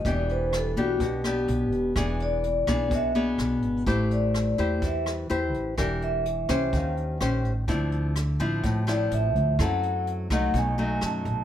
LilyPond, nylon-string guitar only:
\new Staff \with { instrumentName = "Nylon-string guitar" } { \time 4/4 \key e \phrygian \tempo 4 = 126 << { <b d' g'>4. <b d' g'>4 <b d' g'>4. | <b d' gis'>4 r8 <b d' gis'>4 <b d' gis'>4. | <e' g' c''>4. <e' g' c''>4. <e' g' c''>4 | <d' g' bes'>4 r8 <des' g' c''>4. <des' g' c''>8 r8 |
<f c' e'>4 r8 <f c' e'>4 <f c' e'>4. | <c' e' a'>4. <fis a ees'>4 <fis a dis'>4. | } \\ { e2 b,2 | e2 b,2 | a2 e2 | e2 ees2 |
d2 a,2 | fis2 b,2 | } >> }